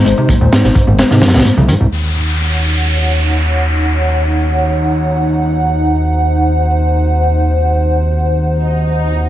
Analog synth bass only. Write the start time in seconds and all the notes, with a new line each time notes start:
0.06 G#1
0.41 D#2
0.65 G#1
0.88 G#1
1.11 G#2
1.22 F#2
1.34 C2
1.58 C2
1.69 G#2
1.81 C2
1.92 D#2